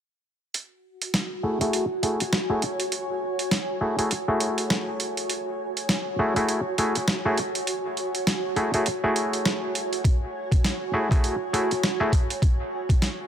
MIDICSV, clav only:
0, 0, Header, 1, 2, 480
1, 0, Start_track
1, 0, Key_signature, 3, "minor"
1, 0, Tempo, 594059
1, 440, Time_signature, 4, 2, 24, 8
1, 10723, End_track
2, 0, Start_track
2, 0, Title_t, "Clav"
2, 0, Program_c, 0, 7
2, 1158, Note_on_c, 0, 66, 69
2, 1158, Note_on_c, 0, 68, 88
2, 1159, Note_on_c, 0, 57, 82
2, 1160, Note_on_c, 0, 64, 74
2, 1279, Note_off_c, 0, 57, 0
2, 1279, Note_off_c, 0, 66, 0
2, 1279, Note_off_c, 0, 68, 0
2, 1280, Note_off_c, 0, 64, 0
2, 1300, Note_on_c, 0, 57, 87
2, 1300, Note_on_c, 0, 64, 78
2, 1300, Note_on_c, 0, 66, 79
2, 1300, Note_on_c, 0, 68, 93
2, 1496, Note_off_c, 0, 57, 0
2, 1496, Note_off_c, 0, 64, 0
2, 1496, Note_off_c, 0, 66, 0
2, 1496, Note_off_c, 0, 68, 0
2, 1638, Note_on_c, 0, 64, 67
2, 1638, Note_on_c, 0, 66, 67
2, 1639, Note_on_c, 0, 57, 73
2, 1640, Note_on_c, 0, 68, 80
2, 1786, Note_off_c, 0, 57, 0
2, 1786, Note_off_c, 0, 64, 0
2, 1786, Note_off_c, 0, 66, 0
2, 1786, Note_off_c, 0, 68, 0
2, 2017, Note_on_c, 0, 57, 85
2, 2017, Note_on_c, 0, 64, 78
2, 2017, Note_on_c, 0, 66, 83
2, 2018, Note_on_c, 0, 68, 97
2, 2125, Note_off_c, 0, 64, 0
2, 2126, Note_off_c, 0, 57, 0
2, 2126, Note_off_c, 0, 66, 0
2, 2126, Note_off_c, 0, 68, 0
2, 3077, Note_on_c, 0, 68, 69
2, 3078, Note_on_c, 0, 57, 68
2, 3078, Note_on_c, 0, 64, 60
2, 3079, Note_on_c, 0, 66, 61
2, 3198, Note_off_c, 0, 68, 0
2, 3199, Note_off_c, 0, 57, 0
2, 3199, Note_off_c, 0, 64, 0
2, 3199, Note_off_c, 0, 66, 0
2, 3219, Note_on_c, 0, 57, 71
2, 3219, Note_on_c, 0, 68, 83
2, 3220, Note_on_c, 0, 66, 65
2, 3221, Note_on_c, 0, 64, 65
2, 3326, Note_off_c, 0, 57, 0
2, 3326, Note_off_c, 0, 68, 0
2, 3327, Note_off_c, 0, 64, 0
2, 3327, Note_off_c, 0, 66, 0
2, 3459, Note_on_c, 0, 57, 84
2, 3459, Note_on_c, 0, 64, 74
2, 3459, Note_on_c, 0, 68, 97
2, 3460, Note_on_c, 0, 66, 77
2, 4975, Note_off_c, 0, 57, 0
2, 4975, Note_off_c, 0, 64, 0
2, 4975, Note_off_c, 0, 68, 0
2, 4976, Note_off_c, 0, 66, 0
2, 5002, Note_on_c, 0, 57, 86
2, 5002, Note_on_c, 0, 64, 74
2, 5002, Note_on_c, 0, 66, 79
2, 5002, Note_on_c, 0, 68, 88
2, 5121, Note_off_c, 0, 57, 0
2, 5121, Note_off_c, 0, 64, 0
2, 5121, Note_off_c, 0, 66, 0
2, 5121, Note_off_c, 0, 68, 0
2, 5140, Note_on_c, 0, 57, 88
2, 5140, Note_on_c, 0, 64, 83
2, 5140, Note_on_c, 0, 66, 78
2, 5140, Note_on_c, 0, 68, 96
2, 5336, Note_off_c, 0, 57, 0
2, 5336, Note_off_c, 0, 66, 0
2, 5337, Note_off_c, 0, 64, 0
2, 5337, Note_off_c, 0, 68, 0
2, 5480, Note_on_c, 0, 64, 68
2, 5480, Note_on_c, 0, 68, 84
2, 5481, Note_on_c, 0, 57, 75
2, 5481, Note_on_c, 0, 66, 68
2, 5626, Note_off_c, 0, 64, 0
2, 5627, Note_off_c, 0, 57, 0
2, 5627, Note_off_c, 0, 66, 0
2, 5627, Note_off_c, 0, 68, 0
2, 5861, Note_on_c, 0, 64, 81
2, 5862, Note_on_c, 0, 57, 88
2, 5862, Note_on_c, 0, 66, 85
2, 5862, Note_on_c, 0, 68, 99
2, 5967, Note_off_c, 0, 64, 0
2, 5968, Note_off_c, 0, 57, 0
2, 5968, Note_off_c, 0, 66, 0
2, 5968, Note_off_c, 0, 68, 0
2, 6919, Note_on_c, 0, 57, 70
2, 6919, Note_on_c, 0, 64, 61
2, 6919, Note_on_c, 0, 66, 64
2, 6919, Note_on_c, 0, 68, 71
2, 7039, Note_off_c, 0, 57, 0
2, 7039, Note_off_c, 0, 64, 0
2, 7039, Note_off_c, 0, 66, 0
2, 7039, Note_off_c, 0, 68, 0
2, 7062, Note_on_c, 0, 57, 73
2, 7064, Note_on_c, 0, 64, 64
2, 7064, Note_on_c, 0, 66, 63
2, 7064, Note_on_c, 0, 68, 75
2, 7168, Note_off_c, 0, 57, 0
2, 7169, Note_off_c, 0, 64, 0
2, 7169, Note_off_c, 0, 66, 0
2, 7169, Note_off_c, 0, 68, 0
2, 7301, Note_on_c, 0, 57, 82
2, 7303, Note_on_c, 0, 64, 74
2, 7303, Note_on_c, 0, 66, 75
2, 7303, Note_on_c, 0, 68, 93
2, 8816, Note_off_c, 0, 57, 0
2, 8817, Note_off_c, 0, 64, 0
2, 8817, Note_off_c, 0, 66, 0
2, 8817, Note_off_c, 0, 68, 0
2, 8836, Note_on_c, 0, 57, 78
2, 8836, Note_on_c, 0, 68, 90
2, 8837, Note_on_c, 0, 64, 76
2, 8837, Note_on_c, 0, 66, 73
2, 8958, Note_off_c, 0, 57, 0
2, 8958, Note_off_c, 0, 64, 0
2, 8958, Note_off_c, 0, 66, 0
2, 8958, Note_off_c, 0, 68, 0
2, 8979, Note_on_c, 0, 64, 77
2, 8980, Note_on_c, 0, 57, 86
2, 8980, Note_on_c, 0, 66, 81
2, 8980, Note_on_c, 0, 68, 99
2, 9176, Note_off_c, 0, 57, 0
2, 9176, Note_off_c, 0, 64, 0
2, 9176, Note_off_c, 0, 66, 0
2, 9176, Note_off_c, 0, 68, 0
2, 9319, Note_on_c, 0, 64, 68
2, 9319, Note_on_c, 0, 68, 84
2, 9320, Note_on_c, 0, 57, 76
2, 9320, Note_on_c, 0, 66, 69
2, 9466, Note_off_c, 0, 57, 0
2, 9466, Note_off_c, 0, 64, 0
2, 9466, Note_off_c, 0, 66, 0
2, 9466, Note_off_c, 0, 68, 0
2, 9697, Note_on_c, 0, 64, 82
2, 9697, Note_on_c, 0, 68, 100
2, 9698, Note_on_c, 0, 57, 93
2, 9698, Note_on_c, 0, 66, 83
2, 9805, Note_off_c, 0, 64, 0
2, 9805, Note_off_c, 0, 68, 0
2, 9806, Note_off_c, 0, 57, 0
2, 9806, Note_off_c, 0, 66, 0
2, 10723, End_track
0, 0, End_of_file